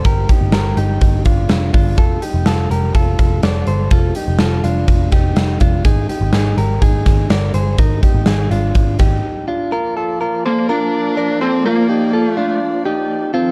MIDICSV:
0, 0, Header, 1, 6, 480
1, 0, Start_track
1, 0, Key_signature, -2, "major"
1, 0, Tempo, 483092
1, 54, Time_signature, 4, 2, 24, 8
1, 13429, End_track
2, 0, Start_track
2, 0, Title_t, "Clean electric guitar"
2, 0, Program_c, 0, 27
2, 59, Note_on_c, 0, 70, 92
2, 66, Note_on_c, 0, 67, 72
2, 278, Note_off_c, 0, 67, 0
2, 290, Note_on_c, 0, 67, 65
2, 296, Note_off_c, 0, 70, 0
2, 300, Note_on_c, 0, 63, 49
2, 523, Note_off_c, 0, 67, 0
2, 527, Note_on_c, 0, 70, 67
2, 535, Note_on_c, 0, 67, 53
2, 536, Note_off_c, 0, 63, 0
2, 754, Note_off_c, 0, 67, 0
2, 766, Note_on_c, 0, 67, 76
2, 769, Note_off_c, 0, 70, 0
2, 774, Note_on_c, 0, 63, 54
2, 1219, Note_off_c, 0, 67, 0
2, 1223, Note_off_c, 0, 63, 0
2, 1246, Note_on_c, 0, 65, 69
2, 1253, Note_on_c, 0, 62, 53
2, 1699, Note_off_c, 0, 65, 0
2, 1703, Note_off_c, 0, 62, 0
2, 1724, Note_on_c, 0, 65, 73
2, 1732, Note_on_c, 0, 62, 55
2, 1967, Note_off_c, 0, 65, 0
2, 1970, Note_on_c, 0, 69, 95
2, 1971, Note_off_c, 0, 62, 0
2, 1977, Note_on_c, 0, 65, 72
2, 2204, Note_off_c, 0, 65, 0
2, 2207, Note_on_c, 0, 67, 66
2, 2210, Note_off_c, 0, 69, 0
2, 2214, Note_on_c, 0, 63, 49
2, 2448, Note_off_c, 0, 67, 0
2, 2451, Note_on_c, 0, 69, 66
2, 2452, Note_off_c, 0, 63, 0
2, 2458, Note_on_c, 0, 65, 51
2, 2688, Note_off_c, 0, 69, 0
2, 2692, Note_on_c, 0, 70, 59
2, 2694, Note_off_c, 0, 65, 0
2, 2700, Note_on_c, 0, 67, 43
2, 2929, Note_off_c, 0, 70, 0
2, 2933, Note_on_c, 0, 69, 78
2, 2934, Note_off_c, 0, 67, 0
2, 2940, Note_on_c, 0, 65, 61
2, 3383, Note_off_c, 0, 69, 0
2, 3386, Note_off_c, 0, 65, 0
2, 3411, Note_on_c, 0, 74, 67
2, 3421, Note_on_c, 0, 69, 52
2, 3647, Note_off_c, 0, 69, 0
2, 3648, Note_off_c, 0, 74, 0
2, 3652, Note_on_c, 0, 72, 72
2, 3659, Note_on_c, 0, 69, 58
2, 3877, Note_off_c, 0, 69, 0
2, 3889, Note_on_c, 0, 69, 89
2, 3891, Note_off_c, 0, 72, 0
2, 3896, Note_on_c, 0, 65, 75
2, 4130, Note_off_c, 0, 69, 0
2, 4133, Note_off_c, 0, 65, 0
2, 4135, Note_on_c, 0, 67, 67
2, 4142, Note_on_c, 0, 63, 54
2, 4365, Note_off_c, 0, 67, 0
2, 4369, Note_on_c, 0, 69, 68
2, 4375, Note_off_c, 0, 63, 0
2, 4379, Note_on_c, 0, 65, 57
2, 4596, Note_off_c, 0, 65, 0
2, 4604, Note_off_c, 0, 69, 0
2, 4608, Note_on_c, 0, 65, 78
2, 4617, Note_on_c, 0, 62, 59
2, 5061, Note_off_c, 0, 65, 0
2, 5066, Note_off_c, 0, 62, 0
2, 5090, Note_on_c, 0, 67, 66
2, 5096, Note_on_c, 0, 63, 59
2, 5543, Note_off_c, 0, 67, 0
2, 5546, Note_off_c, 0, 63, 0
2, 5570, Note_on_c, 0, 65, 74
2, 5578, Note_on_c, 0, 62, 60
2, 5810, Note_off_c, 0, 65, 0
2, 5814, Note_on_c, 0, 68, 93
2, 5816, Note_off_c, 0, 62, 0
2, 5822, Note_on_c, 0, 63, 77
2, 6047, Note_off_c, 0, 63, 0
2, 6049, Note_off_c, 0, 68, 0
2, 6053, Note_on_c, 0, 67, 67
2, 6059, Note_on_c, 0, 63, 49
2, 6290, Note_off_c, 0, 67, 0
2, 6291, Note_off_c, 0, 63, 0
2, 6294, Note_on_c, 0, 68, 65
2, 6303, Note_on_c, 0, 63, 49
2, 6535, Note_off_c, 0, 68, 0
2, 6536, Note_on_c, 0, 70, 59
2, 6539, Note_off_c, 0, 63, 0
2, 6543, Note_on_c, 0, 67, 44
2, 6771, Note_off_c, 0, 67, 0
2, 6775, Note_on_c, 0, 68, 79
2, 6776, Note_off_c, 0, 70, 0
2, 6783, Note_on_c, 0, 63, 61
2, 7228, Note_off_c, 0, 68, 0
2, 7232, Note_off_c, 0, 63, 0
2, 7258, Note_on_c, 0, 74, 71
2, 7266, Note_on_c, 0, 70, 52
2, 7491, Note_off_c, 0, 74, 0
2, 7495, Note_on_c, 0, 72, 72
2, 7499, Note_off_c, 0, 70, 0
2, 7503, Note_on_c, 0, 68, 53
2, 7732, Note_off_c, 0, 68, 0
2, 7736, Note_on_c, 0, 70, 93
2, 7737, Note_off_c, 0, 72, 0
2, 7743, Note_on_c, 0, 63, 73
2, 7971, Note_off_c, 0, 70, 0
2, 7972, Note_off_c, 0, 63, 0
2, 7975, Note_on_c, 0, 67, 71
2, 7984, Note_on_c, 0, 63, 57
2, 8211, Note_off_c, 0, 67, 0
2, 8212, Note_off_c, 0, 63, 0
2, 8214, Note_on_c, 0, 68, 71
2, 8224, Note_on_c, 0, 63, 52
2, 8452, Note_off_c, 0, 68, 0
2, 8456, Note_on_c, 0, 65, 73
2, 8460, Note_off_c, 0, 63, 0
2, 8464, Note_on_c, 0, 62, 54
2, 8909, Note_off_c, 0, 65, 0
2, 8914, Note_off_c, 0, 62, 0
2, 8936, Note_on_c, 0, 67, 72
2, 8944, Note_on_c, 0, 63, 49
2, 9389, Note_off_c, 0, 67, 0
2, 9394, Note_off_c, 0, 63, 0
2, 9418, Note_on_c, 0, 65, 75
2, 9424, Note_on_c, 0, 62, 56
2, 9656, Note_off_c, 0, 65, 0
2, 9660, Note_on_c, 0, 70, 110
2, 9662, Note_off_c, 0, 62, 0
2, 9668, Note_on_c, 0, 65, 82
2, 9899, Note_off_c, 0, 70, 0
2, 9901, Note_off_c, 0, 65, 0
2, 9903, Note_on_c, 0, 69, 76
2, 9913, Note_on_c, 0, 65, 59
2, 10138, Note_off_c, 0, 69, 0
2, 10139, Note_off_c, 0, 65, 0
2, 10142, Note_on_c, 0, 70, 72
2, 10151, Note_on_c, 0, 65, 59
2, 10381, Note_off_c, 0, 70, 0
2, 10385, Note_off_c, 0, 65, 0
2, 10389, Note_on_c, 0, 72, 74
2, 10395, Note_on_c, 0, 69, 50
2, 10620, Note_off_c, 0, 72, 0
2, 10624, Note_on_c, 0, 70, 95
2, 10627, Note_off_c, 0, 69, 0
2, 10631, Note_on_c, 0, 65, 72
2, 11071, Note_off_c, 0, 70, 0
2, 11075, Note_off_c, 0, 65, 0
2, 11100, Note_on_c, 0, 74, 86
2, 11109, Note_on_c, 0, 70, 66
2, 11337, Note_off_c, 0, 74, 0
2, 11341, Note_on_c, 0, 72, 93
2, 11343, Note_off_c, 0, 70, 0
2, 11348, Note_on_c, 0, 69, 72
2, 11578, Note_off_c, 0, 69, 0
2, 11578, Note_off_c, 0, 72, 0
2, 11582, Note_on_c, 0, 70, 116
2, 11592, Note_on_c, 0, 65, 89
2, 11812, Note_off_c, 0, 70, 0
2, 11816, Note_on_c, 0, 67, 82
2, 11820, Note_off_c, 0, 65, 0
2, 11824, Note_on_c, 0, 63, 63
2, 12052, Note_off_c, 0, 67, 0
2, 12056, Note_on_c, 0, 69, 84
2, 12059, Note_off_c, 0, 63, 0
2, 12066, Note_on_c, 0, 65, 69
2, 12279, Note_off_c, 0, 65, 0
2, 12287, Note_off_c, 0, 69, 0
2, 12291, Note_on_c, 0, 65, 90
2, 12299, Note_on_c, 0, 62, 66
2, 12742, Note_off_c, 0, 65, 0
2, 12746, Note_off_c, 0, 62, 0
2, 12773, Note_on_c, 0, 67, 86
2, 12779, Note_on_c, 0, 63, 67
2, 13222, Note_off_c, 0, 67, 0
2, 13226, Note_off_c, 0, 63, 0
2, 13252, Note_on_c, 0, 65, 91
2, 13259, Note_on_c, 0, 60, 73
2, 13429, Note_off_c, 0, 60, 0
2, 13429, Note_off_c, 0, 65, 0
2, 13429, End_track
3, 0, Start_track
3, 0, Title_t, "Lead electric guitar"
3, 0, Program_c, 1, 29
3, 10402, Note_on_c, 1, 58, 88
3, 10614, Note_off_c, 1, 58, 0
3, 10634, Note_on_c, 1, 62, 109
3, 11305, Note_off_c, 1, 62, 0
3, 11346, Note_on_c, 1, 60, 98
3, 11579, Note_off_c, 1, 60, 0
3, 11583, Note_on_c, 1, 58, 90
3, 12199, Note_off_c, 1, 58, 0
3, 12199, Note_on_c, 1, 57, 90
3, 12497, Note_off_c, 1, 57, 0
3, 13429, End_track
4, 0, Start_track
4, 0, Title_t, "String section"
4, 0, Program_c, 2, 48
4, 9653, Note_on_c, 2, 74, 82
4, 9655, Note_on_c, 2, 58, 70
4, 9659, Note_on_c, 2, 53, 80
4, 13211, Note_off_c, 2, 74, 0
4, 13212, Note_off_c, 2, 58, 0
4, 13214, Note_off_c, 2, 53, 0
4, 13251, Note_on_c, 2, 51, 72
4, 13251, Note_on_c, 2, 53, 79
4, 13251, Note_on_c, 2, 60, 71
4, 13254, Note_on_c, 2, 69, 82
4, 13429, Note_off_c, 2, 51, 0
4, 13429, Note_off_c, 2, 53, 0
4, 13429, Note_off_c, 2, 60, 0
4, 13429, Note_off_c, 2, 69, 0
4, 13429, End_track
5, 0, Start_track
5, 0, Title_t, "Picked electric bass"
5, 0, Program_c, 3, 34
5, 50, Note_on_c, 3, 31, 92
5, 247, Note_off_c, 3, 31, 0
5, 407, Note_on_c, 3, 31, 75
5, 508, Note_off_c, 3, 31, 0
5, 527, Note_on_c, 3, 31, 80
5, 726, Note_off_c, 3, 31, 0
5, 766, Note_on_c, 3, 31, 83
5, 965, Note_off_c, 3, 31, 0
5, 1005, Note_on_c, 3, 31, 90
5, 1204, Note_off_c, 3, 31, 0
5, 1248, Note_on_c, 3, 31, 82
5, 1446, Note_off_c, 3, 31, 0
5, 1486, Note_on_c, 3, 29, 82
5, 1684, Note_off_c, 3, 29, 0
5, 1728, Note_on_c, 3, 31, 75
5, 1965, Note_off_c, 3, 31, 0
5, 1965, Note_on_c, 3, 29, 77
5, 2163, Note_off_c, 3, 29, 0
5, 2326, Note_on_c, 3, 29, 87
5, 2426, Note_off_c, 3, 29, 0
5, 2449, Note_on_c, 3, 29, 85
5, 2646, Note_off_c, 3, 29, 0
5, 2685, Note_on_c, 3, 29, 81
5, 2884, Note_off_c, 3, 29, 0
5, 2926, Note_on_c, 3, 29, 90
5, 3124, Note_off_c, 3, 29, 0
5, 3167, Note_on_c, 3, 29, 82
5, 3365, Note_off_c, 3, 29, 0
5, 3409, Note_on_c, 3, 29, 91
5, 3606, Note_off_c, 3, 29, 0
5, 3648, Note_on_c, 3, 31, 83
5, 3846, Note_off_c, 3, 31, 0
5, 3886, Note_on_c, 3, 29, 83
5, 4084, Note_off_c, 3, 29, 0
5, 4251, Note_on_c, 3, 29, 77
5, 4349, Note_off_c, 3, 29, 0
5, 4367, Note_on_c, 3, 29, 83
5, 4565, Note_off_c, 3, 29, 0
5, 4607, Note_on_c, 3, 29, 81
5, 4806, Note_off_c, 3, 29, 0
5, 4848, Note_on_c, 3, 29, 81
5, 5047, Note_off_c, 3, 29, 0
5, 5089, Note_on_c, 3, 29, 82
5, 5287, Note_off_c, 3, 29, 0
5, 5330, Note_on_c, 3, 29, 76
5, 5528, Note_off_c, 3, 29, 0
5, 5572, Note_on_c, 3, 29, 75
5, 5769, Note_off_c, 3, 29, 0
5, 5808, Note_on_c, 3, 32, 101
5, 6008, Note_off_c, 3, 32, 0
5, 6169, Note_on_c, 3, 32, 86
5, 6270, Note_off_c, 3, 32, 0
5, 6294, Note_on_c, 3, 32, 81
5, 6492, Note_off_c, 3, 32, 0
5, 6531, Note_on_c, 3, 32, 82
5, 6730, Note_off_c, 3, 32, 0
5, 6773, Note_on_c, 3, 32, 96
5, 6972, Note_off_c, 3, 32, 0
5, 7013, Note_on_c, 3, 32, 89
5, 7212, Note_off_c, 3, 32, 0
5, 7253, Note_on_c, 3, 31, 89
5, 7452, Note_off_c, 3, 31, 0
5, 7493, Note_on_c, 3, 31, 84
5, 7692, Note_off_c, 3, 31, 0
5, 7733, Note_on_c, 3, 32, 86
5, 7933, Note_off_c, 3, 32, 0
5, 8090, Note_on_c, 3, 32, 77
5, 8192, Note_off_c, 3, 32, 0
5, 8210, Note_on_c, 3, 32, 77
5, 8411, Note_off_c, 3, 32, 0
5, 8454, Note_on_c, 3, 32, 88
5, 8653, Note_off_c, 3, 32, 0
5, 8696, Note_on_c, 3, 32, 92
5, 8895, Note_off_c, 3, 32, 0
5, 8936, Note_on_c, 3, 32, 80
5, 9135, Note_off_c, 3, 32, 0
5, 13429, End_track
6, 0, Start_track
6, 0, Title_t, "Drums"
6, 45, Note_on_c, 9, 42, 71
6, 49, Note_on_c, 9, 36, 90
6, 144, Note_off_c, 9, 42, 0
6, 149, Note_off_c, 9, 36, 0
6, 289, Note_on_c, 9, 42, 63
6, 291, Note_on_c, 9, 36, 79
6, 388, Note_off_c, 9, 42, 0
6, 390, Note_off_c, 9, 36, 0
6, 521, Note_on_c, 9, 38, 105
6, 526, Note_on_c, 9, 42, 71
6, 620, Note_off_c, 9, 38, 0
6, 625, Note_off_c, 9, 42, 0
6, 766, Note_on_c, 9, 42, 72
6, 865, Note_off_c, 9, 42, 0
6, 1004, Note_on_c, 9, 42, 69
6, 1008, Note_on_c, 9, 36, 73
6, 1103, Note_off_c, 9, 42, 0
6, 1108, Note_off_c, 9, 36, 0
6, 1241, Note_on_c, 9, 42, 62
6, 1249, Note_on_c, 9, 36, 73
6, 1340, Note_off_c, 9, 42, 0
6, 1348, Note_off_c, 9, 36, 0
6, 1480, Note_on_c, 9, 42, 77
6, 1486, Note_on_c, 9, 38, 100
6, 1580, Note_off_c, 9, 42, 0
6, 1585, Note_off_c, 9, 38, 0
6, 1726, Note_on_c, 9, 46, 62
6, 1730, Note_on_c, 9, 36, 85
6, 1826, Note_off_c, 9, 46, 0
6, 1830, Note_off_c, 9, 36, 0
6, 1964, Note_on_c, 9, 42, 73
6, 1966, Note_on_c, 9, 36, 92
6, 2063, Note_off_c, 9, 42, 0
6, 2066, Note_off_c, 9, 36, 0
6, 2207, Note_on_c, 9, 42, 64
6, 2307, Note_off_c, 9, 42, 0
6, 2443, Note_on_c, 9, 38, 98
6, 2448, Note_on_c, 9, 42, 68
6, 2542, Note_off_c, 9, 38, 0
6, 2547, Note_off_c, 9, 42, 0
6, 2695, Note_on_c, 9, 42, 66
6, 2794, Note_off_c, 9, 42, 0
6, 2927, Note_on_c, 9, 42, 69
6, 2928, Note_on_c, 9, 36, 83
6, 3026, Note_off_c, 9, 42, 0
6, 3028, Note_off_c, 9, 36, 0
6, 3167, Note_on_c, 9, 42, 69
6, 3170, Note_on_c, 9, 36, 75
6, 3266, Note_off_c, 9, 42, 0
6, 3269, Note_off_c, 9, 36, 0
6, 3406, Note_on_c, 9, 42, 77
6, 3411, Note_on_c, 9, 38, 107
6, 3505, Note_off_c, 9, 42, 0
6, 3511, Note_off_c, 9, 38, 0
6, 3643, Note_on_c, 9, 42, 67
6, 3742, Note_off_c, 9, 42, 0
6, 3881, Note_on_c, 9, 42, 71
6, 3887, Note_on_c, 9, 36, 93
6, 3980, Note_off_c, 9, 42, 0
6, 3986, Note_off_c, 9, 36, 0
6, 4122, Note_on_c, 9, 42, 64
6, 4222, Note_off_c, 9, 42, 0
6, 4358, Note_on_c, 9, 38, 103
6, 4363, Note_on_c, 9, 42, 71
6, 4457, Note_off_c, 9, 38, 0
6, 4462, Note_off_c, 9, 42, 0
6, 4609, Note_on_c, 9, 42, 65
6, 4709, Note_off_c, 9, 42, 0
6, 4848, Note_on_c, 9, 42, 68
6, 4850, Note_on_c, 9, 36, 76
6, 4947, Note_off_c, 9, 42, 0
6, 4949, Note_off_c, 9, 36, 0
6, 5082, Note_on_c, 9, 38, 30
6, 5084, Note_on_c, 9, 42, 70
6, 5091, Note_on_c, 9, 36, 79
6, 5181, Note_off_c, 9, 38, 0
6, 5184, Note_off_c, 9, 42, 0
6, 5190, Note_off_c, 9, 36, 0
6, 5327, Note_on_c, 9, 42, 73
6, 5332, Note_on_c, 9, 38, 101
6, 5426, Note_off_c, 9, 42, 0
6, 5431, Note_off_c, 9, 38, 0
6, 5565, Note_on_c, 9, 42, 67
6, 5574, Note_on_c, 9, 36, 81
6, 5665, Note_off_c, 9, 42, 0
6, 5673, Note_off_c, 9, 36, 0
6, 5809, Note_on_c, 9, 42, 74
6, 5811, Note_on_c, 9, 36, 93
6, 5908, Note_off_c, 9, 42, 0
6, 5910, Note_off_c, 9, 36, 0
6, 6055, Note_on_c, 9, 42, 62
6, 6154, Note_off_c, 9, 42, 0
6, 6286, Note_on_c, 9, 38, 97
6, 6292, Note_on_c, 9, 42, 73
6, 6386, Note_off_c, 9, 38, 0
6, 6391, Note_off_c, 9, 42, 0
6, 6536, Note_on_c, 9, 42, 73
6, 6635, Note_off_c, 9, 42, 0
6, 6774, Note_on_c, 9, 42, 67
6, 6775, Note_on_c, 9, 36, 77
6, 6873, Note_off_c, 9, 42, 0
6, 6875, Note_off_c, 9, 36, 0
6, 7012, Note_on_c, 9, 38, 31
6, 7014, Note_on_c, 9, 42, 69
6, 7017, Note_on_c, 9, 36, 77
6, 7111, Note_off_c, 9, 38, 0
6, 7113, Note_off_c, 9, 42, 0
6, 7116, Note_off_c, 9, 36, 0
6, 7252, Note_on_c, 9, 42, 74
6, 7257, Note_on_c, 9, 38, 105
6, 7351, Note_off_c, 9, 42, 0
6, 7357, Note_off_c, 9, 38, 0
6, 7491, Note_on_c, 9, 42, 68
6, 7591, Note_off_c, 9, 42, 0
6, 7732, Note_on_c, 9, 42, 72
6, 7735, Note_on_c, 9, 36, 89
6, 7832, Note_off_c, 9, 42, 0
6, 7835, Note_off_c, 9, 36, 0
6, 7977, Note_on_c, 9, 42, 62
6, 7978, Note_on_c, 9, 36, 82
6, 8076, Note_off_c, 9, 42, 0
6, 8077, Note_off_c, 9, 36, 0
6, 8206, Note_on_c, 9, 38, 98
6, 8211, Note_on_c, 9, 42, 72
6, 8305, Note_off_c, 9, 38, 0
6, 8310, Note_off_c, 9, 42, 0
6, 8459, Note_on_c, 9, 42, 67
6, 8558, Note_off_c, 9, 42, 0
6, 8692, Note_on_c, 9, 42, 69
6, 8697, Note_on_c, 9, 36, 86
6, 8791, Note_off_c, 9, 42, 0
6, 8796, Note_off_c, 9, 36, 0
6, 8929, Note_on_c, 9, 38, 30
6, 8931, Note_on_c, 9, 42, 70
6, 8938, Note_on_c, 9, 36, 80
6, 9028, Note_off_c, 9, 38, 0
6, 9031, Note_off_c, 9, 42, 0
6, 9038, Note_off_c, 9, 36, 0
6, 13429, End_track
0, 0, End_of_file